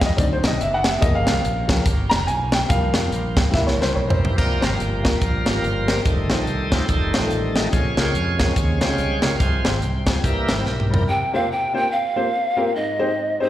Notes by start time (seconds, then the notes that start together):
Already playing: F2 C#3 F3 G#3 A#3 C4 G#4
0.01 kick, snare, closed hi-hat
0.06 D#5
0.16 D2 D#3 F#3 C4 D4 F#4 D5, kick, closed hi-hat
0.33 C5
0.43 B1 D#5, snare, closed hi-hat
0.61 F#1 E5, closed hi-hat
0.74 F#5
0.84 E5, snare, closed hi-hat
1.00 G1 C#3 F3 A#3 C#4 G4 D#5, kick, closed hi-hat
1.15 F5
1.27 C2, snare, closed hi-hat
1.44 A#1, closed hi-hat
1.67 C#3 F3 A#3, kick, snare, closed hi-hat
1.86 G1, kick, closed hi-hat
2.10 F1 A#5, snare, closed hi-hat
2.27 B1 G#5, closed hi-hat
2.52 G5, snare, closed hi-hat
2.68 C2 F3 G3 A#3 C4 G4 F5, kick, closed hi-hat
2.94 F2, snare, closed hi-hat
3.11 A#1, closed hi-hat
3.37 kick, snare, closed hi-hat
3.52 C2 E3 G3 A#3 C4 G4 E5, kick, snare
3.67 C#5, snare
3.78 C#2 C5, snare
3.95 B1 C#5
4.09 C5, floor tom
4.25 floor tom
4.36 C2 C3 F3 G3 A#3 A#4 G5, kick, crash
4.60 G#1 A#3 F4 G4 C5 F5, snare, closed hi-hat
4.80 G1 G5, closed hi-hat
5.03 A#3 F4 G4 A#4 G5, kick, snare, closed hi-hat
5.15 E5
5.21 A#1 A#4 F5, kick, closed hi-hat
5.45 G#1 A#3 F4 G4 A#4, snare, closed hi-hat
5.54 A#3 F4 G4 A#4
5.63 G1, closed hi-hat
5.87 A#3 F4 G4 C5, snare, closed hi-hat
6.05 F1 D#3 G3 A3 A4 C5 D#5, kick, closed hi-hat
6.30 A#1 A3 D#4 F4 C5, snare, closed hi-hat
6.47 C2, closed hi-hat
6.72 A3 D#4 F4 C5, kick, snare, closed hi-hat
6.88 F1 D#3 G3 A3 D#4 A4 C5, kick, closed hi-hat
7.14 A1 A3 D#4 F4 C5, snare, closed hi-hat
7.23 A3 D#4 F4 A4
7.31 A1, closed hi-hat
7.56 A3 D#4 F4 D#5, snare, closed hi-hat
7.71 A#1 A#2 C3 C#3 G#3 C#5 F5 G#5, kick, closed hi-hat
7.97 C#2 G#3 C#4 F4 A#4 G5, snare, closed hi-hat
8.14 F2 G#5, closed hi-hat
8.38 G#3 C#4 F4 A#4 C#5 F5 G#5, kick, snare, closed hi-hat
8.56 D#2, kick, closed hi-hat
8.80 C#2 G#3 C#4 F4 C5 C#5 G5, snare, closed hi-hat
8.88 G#3 C#4 F4 C#5
8.98 C2, closed hi-hat
9.22 C#2 G#3 C#4 F4 A#4 F5, snare, closed hi-hat
9.39 C2 C3 F3 G#3 C4 C5 F5 G#5, kick, closed hi-hat
9.64 G#1 G#3 C4 F4 C5 F5, snare, closed hi-hat
9.82 C2 G5, closed hi-hat
10.06 G#3 C4 F4 G#4 G#5, kick, snare, closed hi-hat
10.24 C2 C3 E3 G3 A#3 G4 A#4 E5, kick, closed hi-hat
10.48 G#1 G3 C4 E4 A#4, snare, closed hi-hat
10.57 G3 C4 E4 C5
10.65 B1, snare
10.80 mid tom
10.90 G3 C4 E4 A#4, floor tom
11.09 C3 G5
11.33 A#3 C4 F4 G4 C5 F5
11.52 G5
11.74 A#3 C4 F4 G4 C5 G5
11.92 F5
12.16 A#3 C4 F4 G4 C5
12.57 A#3 C4 F4 G4 A#4
12.75 G#2 D#5
12.99 G#3 C4 D#4 G4 C5
13.40 G#3 C4 D#4 G4 C5